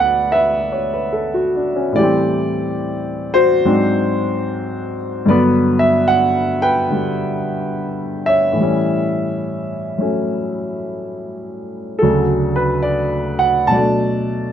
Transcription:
Already playing: D2 D3 F#3 B3 F#4 A4 B4 D5
0.00 F#5
0.32 B4 E5
0.72 C#5
0.94 B4
1.13 A4
1.34 F#4
1.56 D4
1.76 C#4
1.93 A2 E3 D5
1.99 G3 G4
2.03 C4
3.34 F#4 C5
3.65 G#2 F#3 C4 D4
5.25 G2 D3 F#3 B4 D5
5.30 B3
5.79 E5
6.08 F#5
6.62 B4 G5
6.90 D3 G3
8.26 C#5 E5
8.52 A2 E3
8.60 G3 C#4
9.98 F#3 A3 C#4
11.99 D2 D3 F#4 A4
12.03 C#3 F#3
12.56 B4
12.82 D5
13.39 F#5
13.67 B2 A5
13.72 F#3 D5
13.76 A3 D4

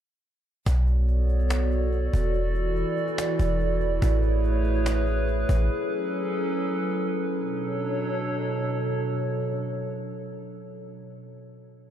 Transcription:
0.66 B1 B3 F#4 A4 C#5 D5, cajon bass
0.87 cajon slap
1.09 cajon slap
1.29 cajon slap
1.40 cajon slap
1.50 cajon slap
1.71 cajon slap
1.93 cajon slap
2.13 E1, cajon bass
2.34 E3 E4, cajon slap
2.55 cajon slap
2.76 cajon slap
2.97 cajon slap
3.08 cajon slap
3.18 cajon slap
3.39 E1, cajon bass
3.60 cajon slap
3.81 cajon slap
4.02 A1 A3 G#4 B4 C#5, cajon bass
4.23 cajon slap
4.44 cajon slap
4.65 cajon slap
4.75 cajon slap
4.86 cajon slap
5.07 cajon slap
5.28 cajon slap
5.49 A1, cajon bass
5.70 F#3 C#4 A4
7.38 B2 F#3 D4 A4 C#5

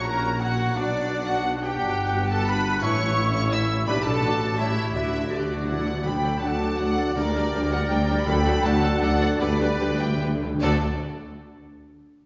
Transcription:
Already playing: A#1 A#2 E4 F#5
0.04 C#4 F#4 A#4 A#5
0.39 C#4 F#4 F#5
0.74 B1 B2 F#3 B3 D4 F#4 D5
1.25 F#4 F#5
1.61 G4 G5
1.78 G1 G2 F#3 B3 D4 F#4 F#5
2.31 A4 A5
2.47 D4 B4 F#5 B5
2.82 A1 A2 E3 C#4 E4 C#5 E5 C#6
3.35 C#5 C#6
3.51 E4 E5 E6
3.86 B1 B2 G3 D4 G4 B4 D5 B5
4.04 A4 A5
4.21 A1 A2 F#3 D4 F#4 D5
4.57 G3 C#4 E4 G4 C#5 E5
4.93 D2 D3 F#3 D4 E4 F#4 D5 E5
5.04 D3
5.12 D3
5.19 D3
5.30 D4 F#4 G4 D5
5.35 D3
5.42 D3
5.49 D3 F#4
5.57 D3
5.64 D3 E4
5.68 D3 D5 F#5
5.79 D3
5.86 D3 D4
5.94 D3
6.04 D2 D3 F#3 D4 F#4 A4 D5 G5 B5
6.23 F#3 D4 A4 D5
6.41 D2 F#3 D4 A4 D5 F#5 A5
6.60 F#3 D4 A4 D5
6.79 D2 F#3 D4 A4 D5 F#5
6.98 F#3 D4 A4 D5
7.15 D2 D3 G3 D4 G4 A#4 D5
7.36 G3 D4 A#4 D5
7.53 D2 G3 D4 A#4 D5
7.71 G3 D4 A#4 D5 F#5
7.89 D2 G3 D4 A#4 D5 G5
8.09 G3 D4 A#4 D5
8.26 D2 D3 F#3 D4 F#4 A4 D5 G5 B5
8.44 F#3 D4 A4 D5
8.63 D2 F#3 D4 A4 D5 F#5 A5
8.82 F#3 D4 A4 D5
9.01 D2 F#3 D4 A4 D5 F#5
9.21 F#3 D4 A4 D5
9.39 D2 D3 G3 D4 G4 B4 D5
9.49 D3
9.58 D3 G3 D4 G4 B4
9.66 D3
9.74 D3
9.79 D2 D3 G3 D4 G4 B4
9.91 D3
9.99 D3 G3 D4 G4 B4 E5 G5
10.09 D3
10.17 D2 D3 G3 D4 G4 B4
10.26 D3
10.36 D3
10.42 D3 G3 D4 G4 B4
10.54 D3
10.61 D2 D3 F#3 A3 D4 F#4 A4 D5

